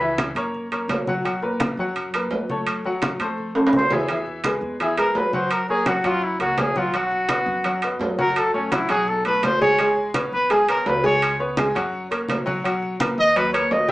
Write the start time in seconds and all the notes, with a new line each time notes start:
Already playing: C#2 B4
0.00 E3 E4 E5, high conga
0.18 high conga, high timbale, low timbale
0.35 F#2 A#3 A#4 C#5, high conga, high timbale
0.54 high conga
0.72 A#3 A#4 C#5, high conga, high timbale
0.88 B1, high conga, high timbale, low timbale
1.07 F#3 F#4 F#5, high conga
1.25 F#3 F#4 F#5, high conga, high timbale
1.42 A#2 A#4 B4, high conga
1.60 high conga, high timbale, low timbale
1.77 F#2 F#3 F#4 F#5, high conga
1.96 high conga, high timbale
2.14 A#2 A#4 B4, high conga, high timbale
2.31 F#2, high conga, low timbale
2.50 A3 A4 C#5, high conga
2.67 high conga, high timbale
2.84 F#3 F#4 F#5, high conga
3.02 high conga, high timbale, low timbale
3.19 F2 A3 A4 C5, high conga, high timbale
3.38 high conga
3.55 A3 A4 C5, high conga, high timbale
3.67 high timbale
3.73 E2 C5, high conga
3.79 low timbale
3.91 E3 E4 G#4 E5, high conga, low timbale
4.08 E3 E4 E5, high conga, high timbale
4.26 high conga
4.44 G#3 G#4 B4, high conga, high timbale, low timbale
4.61 E2, high conga
4.80 E3 E4 G#4 E5, high conga, high timbale
4.98 G#3 G#4 A#4 B4, high conga, high timbale
5.15 F#2 B4, high conga, low timbale
5.33 F#3 F#4 C5 F#5, high conga
5.51 A#4, high conga, high timbale
5.69 A#3 G#4 A#4 C#5, high conga
5.86 F#3 F#4 F#5, high conga, high timbale, low timbale
6.04 F#2 F#3 F4 F#4 F#5, high conga, high timbale
6.22 E4, high conga
6.39 C#2 A#3 F#4 A#4 C#5, high conga, high timbale
6.57 B1 G#4, high conga, high timbale, low timbale
6.76 F#3 F4 F#4 F#5, high conga
6.94 F#3 F#4 F#5, high conga, high timbale
7.12 high conga
7.29 B3 B4 D#5, high conga, high timbale, low timbale
7.46 F#2, high conga
7.64 F#3 F#4 F#5, high conga, high timbale
7.82 B3 B4 D#5, high conga, high timbale
7.99 F#2, high conga, low timbale
8.18 F#3 F#4 A#4 F#5, high conga
8.36 A4, high conga, high timbale
8.54 A3 C#4 A4 C#5, high conga
8.71 F#3 E4 F#4 F#5, high conga, high timbale, low timbale
8.89 B1 F#3 F#4 G#4 F#5, high conga, high timbale
9.08 A4, high conga
9.25 A3 A4 B4, high conga, high timbale
9.43 E2 C5, high conga, high timbale, low timbale
9.61 G#3 G#4 C#5 G#5, high conga
9.79 G#3 G#4 G#5, high conga, high timbale
9.97 high conga
10.14 B3 B4 C#5, high conga, high timbale, low timbale
10.32 B1 B4, high conga
10.50 G#3 G#4 G#5, high conga, high timbale
10.69 B3 A#4 B4 C#5, high conga, high timbale
10.86 C#2 B4, high conga, low timbale
11.04 G#3 G#4 C#5 G#5, high conga
11.22 high conga, high timbale
11.40 B3 B4 C#5, high conga
11.57 G#3 G#4 G#5, high conga, high timbale, low timbale
11.75 F#2 F#3 F#4 F#5, high conga, high timbale
11.93 high conga
12.11 A#3 A#4 C#5, high conga, high timbale
12.28 B1, high conga, high timbale, low timbale
12.46 F#3 F#4 F#5, high conga
12.64 F#3 F#4 F#5, high conga, high timbale
12.82 high conga
13.00 A#2 A#4 B4, high conga, high timbale, low timbale
13.18 D#2 D#5, high conga
13.36 F#3 F#4 B4 F#5, high conga, high timbale
13.53 A#2 A#4 B4 C#5, high conga, high timbale
13.71 D#2 D#5, high conga, low timbale
13.88 G3 G5, high conga